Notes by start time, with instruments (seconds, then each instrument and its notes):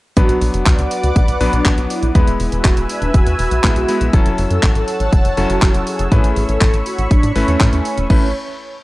0.17 analog synth bass B1, electric grand piano F#3 B3 D4 B4, analog polysynth F#4, analog synth pad B4 D5 F#5 D6, kick, closed hi-hat
0.29 analog synth bass B1, closed hi-hat
0.41 analog synth bass B1, open hi-hat
0.54 analog synth bass F#1, analog polysynth F#4, closed hi-hat
0.66 analog synth bass D2, kick, clap, closed hi-hat
0.79 analog synth bass D2, analog polysynth F#4, closed hi-hat
0.91 open hi-hat
1.03 analog synth bass D2, closed hi-hat
1.16 analog synth bass B1, kick, closed hi-hat
1.28 analog synth bass B1, closed hi-hat
1.41 analog synth bass B1, electric grand piano F#3 B3 D4 B4, open hi-hat
1.53 analog synth bass B1, analog polysynth D4, closed hi-hat
1.65 analog synth bass B1, kick, clap, closed hi-hat
1.78 analog synth bass B1, closed hi-hat
1.90 analog polysynth E4, open hi-hat
2.03 analog synth bass B1, closed hi-hat
2.15 analog synth bass E2, electric grand piano G#3 B3 E4 B4, analog synth pad B4 E5 G#5 E6, kick, closed hi-hat
2.27 analog synth bass E1, closed hi-hat
2.40 analog synth bass E1, open hi-hat
2.52 analog synth bass E1, analog polysynth F#4, closed hi-hat
2.65 analog synth bass E1, kick, clap, closed hi-hat
2.77 analog synth bass E1, closed hi-hat
2.89 analog polysynth D4, open hi-hat
3.02 analog synth bass E1, closed hi-hat
3.14 analog synth bass E1, analog polysynth F#4, kick, closed hi-hat
3.27 analog synth bass E2, closed hi-hat
3.39 analog synth bass E1, analog polysynth F#4, open hi-hat
3.51 analog synth bass B1, closed hi-hat
3.64 analog synth bass B1, electric grand piano G#3 B3 E4 B4, kick, clap, closed hi-hat
3.76 analog synth bass B1, analog polysynth F#4, closed hi-hat
3.88 electric grand piano G#3 B3 E4 B4, open hi-hat
4.01 analog synth bass B1, closed hi-hat
4.13 analog synth bass F#1, electric grand piano F#3 C#4 E4 A4, analog polysynth A4, analog synth pad C#5 F#5 A5, kick, closed hi-hat
4.26 analog synth bass F#1, closed hi-hat
4.38 analog synth bass F#1, open hi-hat
4.51 analog synth bass F#2, analog polysynth A4, closed hi-hat
4.63 analog synth bass A1, kick, clap, closed hi-hat
4.75 analog synth bass A1, analog polysynth A4, closed hi-hat
4.88 open hi-hat
5.00 analog synth bass A1, closed hi-hat
5.13 analog synth bass F#1, kick, closed hi-hat
5.25 analog synth bass F#1, closed hi-hat
5.37 analog synth bass F#1, electric grand piano F#3 C#4 E4 A4, open hi-hat
5.50 analog synth bass F#1, analog polysynth F#4, closed hi-hat
5.62 analog synth bass F#1, kick, clap, closed hi-hat
5.74 analog synth bass F#1, closed hi-hat
5.87 analog polysynth G#4, open hi-hat
5.99 analog synth bass F#1, closed hi-hat
6.12 analog synth bass A2, electric grand piano A3 C#4 E4 B4, analog polysynth G#4, analog synth pad B5 C#6, kick, closed hi-hat
6.24 analog synth bass A1, closed hi-hat
6.36 analog synth bass A1, open hi-hat
6.49 analog synth bass A1, analog polysynth A4, closed hi-hat
6.61 analog synth bass A1, kick, clap, closed hi-hat
6.74 analog synth bass A1, closed hi-hat
6.86 analog polysynth F#4, open hi-hat
6.98 analog synth bass A1, closed hi-hat
7.11 analog synth bass A1, analog polysynth D4, kick, closed hi-hat
7.23 analog synth bass A2, closed hi-hat
7.36 analog synth bass A1, electric grand piano A3 C#4 E4 B4, analog polysynth C#4, open hi-hat
7.48 analog synth bass E2, closed hi-hat
7.60 analog synth bass A2, kick, clap, closed hi-hat
7.73 analog synth bass E2, analog polysynth C#4, closed hi-hat
7.85 open hi-hat
7.98 analog synth bass E1, closed hi-hat
8.10 analog synth bass A1, electric grand piano A3 C#4 E4 B4, analog polysynth C#4, kick, crash